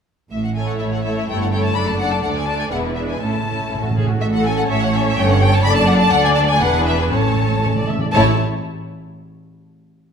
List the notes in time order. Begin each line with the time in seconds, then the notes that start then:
0.31 A1 A2 E5
0.45 F#5
0.55 A3 E4 A4 C#5 G#5
0.68 F#5
0.79 A1 A2 E5
0.92 F#5
1.04 A3 E4 A4 C#5 E5
1.17 E5
1.28 G1 G2 A3 E4 A4 C#5 G5
1.41 F#5
1.52 A3 E4 A4 C#5 G5
1.65 A5
1.75 F#1 F#2 A3 D4 A4 D5 B5
1.88 A5
1.99 A3 D4 A4 D5 F#5
2.12 A5
2.22 D2 A3 D4 A4 D5 F#5
2.36 G#5
2.47 A3 D4 A4 D5 A5
2.59 G#5
2.71 E1 E2 G#3 D4 E4 B4 F#5
2.96 G#3 D4 E4 B4 E5
3.09 G#5
3.20 A1 A2 A3 C#4 E4 A4 A5
3.29 A2
3.37 A2
3.44 A2 A3 C#4 E4 A4
3.52 A2
3.59 A2
3.67 A1 A2 E4
3.75 A2
3.83 A2 F#4
3.90 A2
3.95 A2 A3 C#4 G#4
4.05 A2 F#4
4.20 A1 A2 A4 E5
4.34 F#5
4.43 C#4 A4 G#5
4.58 F#5
4.68 A1 A2 C#5 E5
4.83 F#5
4.93 C#4 A4 E5
5.09 E5
5.16 G1 G2 C#4 A4 G5
5.31 F#5
5.41 C#4 A4 G5
5.54 A5
5.63 F#1 F#2 D4 A4 D5 B5
5.76 A5
5.87 D4 A4 F#5
5.99 A5
6.11 D2 D4 A4 D5 F#5
6.25 G#5
6.36 A5
6.48 G#5
6.60 E1 E2 D4 G#4 B4 F#5
6.86 E5
6.98 G#5
7.10 A1 A2 C#4 A4 C#5 A5
7.19 A2
7.27 A2
7.35 A2
7.42 A2
7.50 A2
7.58 A2
7.63 A2 C#5
7.74 A2 D5
7.82 A2
7.88 A2 E5
7.98 A2 D5
8.14 A1 A2 A3 E4 C#5 A5